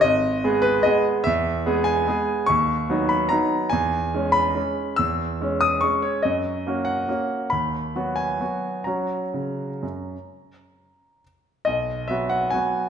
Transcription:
<<
  \new Staff \with { instrumentName = "Grand piano" } { \time 3/4 \key b \major \tempo 4 = 143 dis''4. b'8 dis''8 r8 | e''4. gis''4. | cis'''4. b''8 ais''4 | gis''4. b''4. |
e'''4. dis'''8 cis'''8 cis''8 | dis''4. fis''4. | b''4. gis''4. | ais''2.~ |
ais''2 r4 | dis''4 e''8 fis''8 gis''4 | }
  \new Staff \with { instrumentName = "Grand piano" } { \time 3/4 \key b \major gis,,4 <gis b gis'>4 <gis b gis'>4 | e,4 <gis b gis'>4 <gis b gis'>4 | dis,4 <fis b dis'>4 <fis b dis'>4 | e,4 <gis cis'>4 <gis cis'>4 |
e,4 <gis cis'>4 <gis cis'>4 | fis,4 <ais cis' fis'>4 <ais cis' fis'>4 | dis,4 <fis b fis'>4 <fis b fis'>4 | <fis cis' fis'>4 cis4 fis,4 |
r2. | b,,4 <fis b fis'>4 <fis b fis'>4 | }
>>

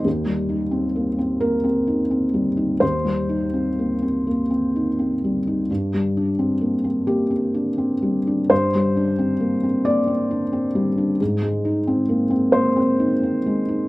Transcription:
\new Staff \with { instrumentName = "Felt piano" } { \time 6/8 \key g \phrygian \tempo 4. = 44 << { r4. bes'4. | c''4. r4. | r4. g'4. | c''4. d''4. |
r4. c''4. | } \\ { ees,16 g16 ees'16 c'16 bes16 c'16 bes16 c'16 ees'16 c'16 g16 ees'16 | ees,16 g16 ees'16 c'16 bes16 c'16 bes16 c'16 ees'16 c'16 g16 ees'16 | g,16 g16 d'16 c'16 bes16 c'16 bes16 c'16 d'16 c'16 g16 d'16 | g,16 g16 d'16 c'16 bes16 c'16 bes16 c'16 d'16 c'16 g16 d'16 |
aes,16 aes16 ees'16 c'16 bes16 c'16 bes16 c'16 ees'16 c'16 aes16 ees'16 | } >> }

